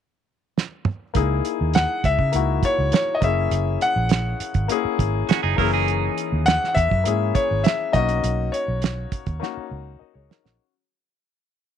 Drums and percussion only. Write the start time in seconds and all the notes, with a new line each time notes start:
0.58 snare
0.85 mid tom
1.15 kick, closed hi-hat
1.45 closed hi-hat
1.74 snare, closed hi-hat
2.04 kick, closed hi-hat
2.19 kick
2.33 closed hi-hat
2.63 kick, closed hi-hat
2.92 snare, closed hi-hat
3.22 kick, closed hi-hat
3.51 closed hi-hat
3.81 closed hi-hat
4.09 snare, closed hi-hat
4.40 closed hi-hat
4.54 kick, closed hi-hat
4.69 closed hi-hat
4.99 kick, closed hi-hat
5.29 snare, closed hi-hat
5.58 kick, open hi-hat
5.88 closed hi-hat
6.18 closed hi-hat
6.46 snare, closed hi-hat
6.64 snare
6.77 kick, closed hi-hat
6.91 kick
7.05 closed hi-hat
7.35 kick, closed hi-hat
7.64 snare, closed hi-hat
7.94 kick, closed hi-hat
8.09 closed hi-hat
8.24 closed hi-hat
8.54 closed hi-hat
8.82 snare, closed hi-hat
9.12 kick, closed hi-hat
9.26 kick, closed hi-hat
9.43 snare
10.31 snare
10.46 snare